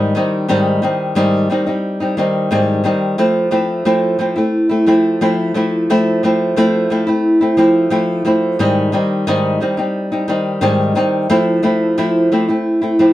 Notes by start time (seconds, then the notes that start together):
Already playing: G#2 D#3 G3 C4 D#4
0.15 D#3 G3 C4 D#4
0.48 G#2 D#3 G3 C4 D#4
0.82 D#3 G3 C4 D#4
1.15 G#2 D#3 G3 C4 D#4
1.50 D#3 G3 C4 D#4
1.67 G3 C4 D#4
2.00 G3 C4 D#4
2.17 D#3 G3 C4 D#4
2.51 G#2 D#3 G3 C4 D#4
2.84 D#3 G3 C4 D#4
3.18 F3 A3 C4 E4
3.51 F3 A3 C4 E4
3.85 F3 A3 C4 E4
4.19 F3 A3 C4 E4
4.36 A3 C4 E4
4.69 A3 C4 E4
4.87 F3 A3 C4 E4
5.21 F3 A3 C4 E4
5.54 F3 A3 C4 E4
5.90 F3 A3 C4 E4
6.23 F3 A3 C4 E4
6.56 F3 A3 C4 E4
6.90 F3 A3 C4 E4
7.07 A3 C4 E4
7.41 A3 C4 E4
7.57 F3 A3 C4 E4
7.90 F3 A3 C4 E4
8.25 F3 A3 C4 E4
8.59 G#2 D#3 G3 C4 D#4
8.92 D#3 G3 C4 D#4
9.27 G#2 D#3 G3 C4 D#4
9.61 D#3 G3 C4 D#4
9.77 G3 C4 D#4
10.12 G3 C4 D#4
10.28 D#3 G3 C4 D#4
10.61 G#2 D#3 G3 C4 D#4
10.95 D#3 G3 C4 D#4
11.30 F3 A3 C4 E4
11.63 F3 A3 C4 E4
11.98 F3 A3 C4 E4
12.32 F3 A3 C4 E4
12.49 A3 C4 E4
12.82 A3 C4 E4
12.99 F3 A3 C4 E4